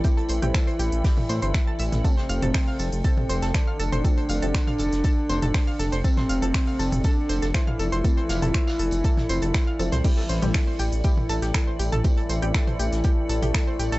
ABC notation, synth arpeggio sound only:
X:1
M:4/4
L:1/16
Q:1/4=120
K:Am
V:1 name="Synth arpeggio sound"
[Gg] [Aa] [cc'] [Gg] [Aa] [cc'] [Gg] z [Gg] z [cc'] [cc'] [ee'] [aa'] [ee'] z | [Aa] [cc'] [ff'] [Aa] [cc'] [ff'] [Aa] z [Aa] z [cc'] [Aa] [cc'] [ff'] [Aa] [cc'] | [Aa] [cc'] [ff'] [Aa] [cc'] [ff'] [Aa] z [Aa] z [cc'] [Aa] [cc'] [ff'] [Aa] [cc'] | [Aa] [cc'] [ff'] [Aa] [cc'] [ff'] [Aa] z [Aa] z [cc'] [Aa] [cc'] [ff'] [Aa] [cc'] |
[Aa] [cc'] [ff'] [Aa] [cc'] [ff'] [Aa] z [Aa] z [cc'] [Aa] [cc'] [ff'] [Aa] [cc'] | [Gg] [Aa] [cc'] [Gg] [Aa] [cc'] [Gg] z [Gg] z [Aa] [Gg] [Aa] [cc'] [Gg] [Aa] | [Gg] [Aa] [cc'] [Gg] [Aa] [cc'] [Gg] z [Gg] z [Aa] [Gg] [Aa] [cc'] [Gg] [Aa] |]